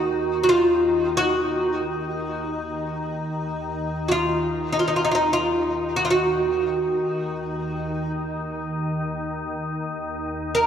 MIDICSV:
0, 0, Header, 1, 3, 480
1, 0, Start_track
1, 0, Key_signature, -6, "minor"
1, 0, Tempo, 500000
1, 10240, End_track
2, 0, Start_track
2, 0, Title_t, "Oud"
2, 0, Program_c, 0, 24
2, 0, Note_on_c, 0, 66, 71
2, 406, Note_off_c, 0, 66, 0
2, 417, Note_on_c, 0, 66, 55
2, 466, Note_off_c, 0, 66, 0
2, 470, Note_on_c, 0, 65, 77
2, 1120, Note_off_c, 0, 65, 0
2, 1124, Note_on_c, 0, 66, 74
2, 3910, Note_off_c, 0, 66, 0
2, 3922, Note_on_c, 0, 66, 46
2, 3947, Note_off_c, 0, 66, 0
2, 3951, Note_on_c, 0, 65, 68
2, 4527, Note_off_c, 0, 65, 0
2, 4536, Note_on_c, 0, 63, 54
2, 4597, Note_off_c, 0, 63, 0
2, 4601, Note_on_c, 0, 65, 53
2, 4675, Note_off_c, 0, 65, 0
2, 4681, Note_on_c, 0, 63, 54
2, 4754, Note_off_c, 0, 63, 0
2, 4763, Note_on_c, 0, 65, 53
2, 4834, Note_off_c, 0, 65, 0
2, 4843, Note_on_c, 0, 63, 57
2, 4906, Note_off_c, 0, 63, 0
2, 4909, Note_on_c, 0, 65, 51
2, 4939, Note_off_c, 0, 65, 0
2, 4942, Note_on_c, 0, 63, 64
2, 5113, Note_off_c, 0, 63, 0
2, 5117, Note_on_c, 0, 65, 68
2, 5721, Note_off_c, 0, 65, 0
2, 5725, Note_on_c, 0, 66, 62
2, 5798, Note_off_c, 0, 66, 0
2, 5806, Note_on_c, 0, 65, 54
2, 5856, Note_off_c, 0, 65, 0
2, 5860, Note_on_c, 0, 66, 69
2, 7781, Note_off_c, 0, 66, 0
2, 10125, Note_on_c, 0, 70, 74
2, 10240, Note_off_c, 0, 70, 0
2, 10240, End_track
3, 0, Start_track
3, 0, Title_t, "Ambient pad"
3, 0, Program_c, 1, 92
3, 0, Note_on_c, 1, 39, 56
3, 0, Note_on_c, 1, 51, 61
3, 4458, Note_off_c, 1, 51, 0
3, 4460, Note_off_c, 1, 39, 0
3, 4470, Note_on_c, 1, 51, 66
3, 4472, Note_on_c, 1, 39, 60
3, 10240, Note_off_c, 1, 39, 0
3, 10240, Note_off_c, 1, 51, 0
3, 10240, End_track
0, 0, End_of_file